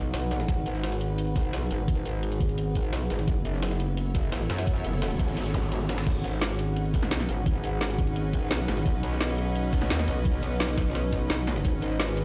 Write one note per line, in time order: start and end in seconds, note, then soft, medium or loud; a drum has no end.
0.00 0.12 B1 loud
0.00 4.05 C#4 medium
0.00 3.24 D#4 medium
0.00 0.46 F#4 medium
0.00 4.39 F#4 medium
0.00 3.24 B4 medium
0.00 3.90 B4 medium
0.00 4.39 D#5 medium
0.00 3.24 F#5 medium
0.14 0.47 B1 loud
0.14 snare loud
0.14 closed hi-hat medium
0.14 open hi-hat medium
0.31 snare medium
0.31 closed hi-hat medium
0.40 snare medium
0.48 0.65 G#1 medium
0.48 3.25 G#4 medium
0.48 kick loud
0.48 closed hi-hat medium
0.66 1.52 G#1 medium
0.66 closed hi-hat medium
0.75 snare soft
0.83 snare loud
0.83 closed hi-hat medium
0.92 snare medium
0.92 closed hi-hat soft
1.01 closed hi-hat medium
1.18 closed hi-hat medium
1.27 closed hi-hat soft
1.36 kick loud
1.36 snare medium
1.36 closed hi-hat medium
1.53 1.69 B1 loud
1.53 snare loud
1.53 closed hi-hat medium
1.62 snare soft
1.71 2.04 G#1 loud
1.71 closed hi-hat medium
1.88 kick loud
1.88 closed hi-hat medium
2.05 2.91 G#1 loud
2.05 closed hi-hat medium
2.23 closed hi-hat medium
2.32 closed hi-hat soft
2.32 closed hi-hat medium
2.40 kick loud
2.40 closed hi-hat medium
2.49 closed hi-hat medium
2.58 closed hi-hat medium
2.75 kick medium
2.75 closed hi-hat medium
2.93 3.09 B1 loud
2.93 snare loud
2.93 closed hi-hat medium
2.93 open hi-hat medium
3.10 3.26 G#1 loud
3.10 snare medium
3.10 closed hi-hat medium
3.19 snare medium
3.28 3.44 F#1 loud
3.28 7.18 B3 loud
3.28 6.04 C#4 medium
3.28 6.07 E4 loud
3.28 6.04 F#4 medium
3.28 6.04 A4 medium
3.28 11.61 F#5 medium
3.28 kick loud
3.28 closed hi-hat medium
3.45 4.31 F#1 medium
3.45 closed hi-hat medium
3.54 snare soft
3.62 snare loud
3.62 closed hi-hat medium
3.71 snare medium
3.71 closed hi-hat soft
3.77 6.07 A4 medium
3.77 closed hi-hat medium
3.97 7.18 C#5 medium
3.97 closed hi-hat medium
4.06 closed hi-hat soft
4.15 kick loud
4.15 snare medium
4.15 closed hi-hat medium
4.32 4.48 A1 loud
4.32 snare loud
4.32 closed hi-hat medium
4.41 snare soft
4.50 4.83 F#2 loud
4.50 snare loud
4.50 closed hi-hat medium
4.58 snare loud
4.58 closed hi-hat medium
4.67 kick loud
4.67 closed hi-hat medium
4.67 noise sweep medium
4.76 snare soft
4.76 closed hi-hat soft
4.84 5.18 F#1 medium
4.84 closed hi-hat medium
4.93 snare soft
5.02 snare loud
5.02 closed hi-hat loud
5.02 closed hi-hat medium
5.11 closed hi-hat soft
5.19 6.05 G#1 loud
5.19 kick loud
5.19 snare soft
5.19 closed hi-hat medium
5.28 closed hi-hat soft
5.37 closed hi-hat medium
5.54 kick medium
5.54 closed hi-hat medium
5.54 zap medium
5.72 closed hi-hat medium
5.80 snare soft
5.89 snare loud
5.89 closed hi-hat medium
5.98 snare loud
5.98 closed hi-hat medium
6.06 6.23 G#1 loud
6.06 12.25 C#4 medium
6.06 8.83 D#4 medium
6.06 8.83 G#4 medium
6.06 12.25 B4 medium
6.06 kick loud
6.06 closed hi-hat medium
6.06 crash medium
6.16 12.25 F#4 medium
6.24 7.10 G#1 medium
6.24 closed hi-hat medium
6.33 snare soft
6.42 snare loud
6.42 closed hi-hat medium
6.50 snare medium
6.50 closed hi-hat soft
6.59 closed hi-hat medium
6.64 12.25 B4 medium
6.76 12.25 D#5 medium
6.76 closed hi-hat medium
6.85 closed hi-hat soft
6.94 kick loud
6.94 snare medium
6.94 closed hi-hat medium
7.03 snare medium
7.11 7.27 B1 loud
7.11 snare loud
7.11 closed hi-hat medium
7.20 snare soft
7.20 snare medium
7.29 7.62 G#1 loud
7.29 closed hi-hat medium
7.46 kick loud
7.46 closed hi-hat medium
7.64 8.49 G#1 medium
7.64 closed hi-hat medium
7.81 snare loud
7.81 closed hi-hat loud
7.81 closed hi-hat medium
7.90 closed hi-hat soft
7.90 closed hi-hat medium
7.98 kick loud
7.98 closed hi-hat medium
8.07 closed hi-hat medium
8.16 closed hi-hat medium
8.33 kick medium
8.33 closed hi-hat medium
8.51 8.67 B1 medium
8.51 snare loud
8.51 closed hi-hat medium
8.51 open hi-hat medium
8.68 8.84 G#1 loud
8.68 snare medium
8.68 closed hi-hat medium
8.77 snare medium
8.86 9.02 B1 loud
8.86 12.25 D#4 medium
8.86 11.62 F#4 medium
8.86 kick loud
8.86 closed hi-hat medium
9.03 9.89 B1 loud
9.03 closed hi-hat medium
9.12 snare soft
9.21 snare loud
9.21 closed hi-hat medium
9.29 snare medium
9.29 closed hi-hat soft
9.38 closed hi-hat medium
9.55 closed hi-hat medium
9.64 closed hi-hat soft
9.73 kick loud
9.73 snare medium
9.73 closed hi-hat medium
9.82 snare medium
9.90 10.06 D#2 loud
9.90 snare loud
9.90 closed hi-hat medium
9.99 snare soft
9.99 snare medium
10.08 10.41 B1 loud
10.08 closed hi-hat medium
10.25 kick loud
10.25 closed hi-hat medium
10.43 11.29 B1 loud
10.43 closed hi-hat medium
10.51 snare soft
10.60 snare loud
10.60 closed hi-hat medium
10.69 closed hi-hat soft
10.78 kick loud
10.78 snare loud
10.78 closed hi-hat medium
10.86 closed hi-hat soft
10.95 snare loud
10.95 closed hi-hat medium
11.12 kick medium
11.12 snare medium
11.12 closed hi-hat medium
11.30 11.63 B1 medium
11.30 snare loud
11.30 closed hi-hat medium
11.30 open hi-hat medium
11.47 snare medium
11.47 closed hi-hat medium
11.56 snare medium
11.65 11.81 G#1 loud
11.65 12.25 G#4 medium
11.65 12.25 F#5 medium
11.65 kick loud
11.65 closed hi-hat medium
11.82 12.25 G#1 loud
11.82 closed hi-hat medium
11.91 snare soft
12.00 snare loud
12.00 closed hi-hat medium
12.08 snare medium
12.08 closed hi-hat soft
12.17 closed hi-hat medium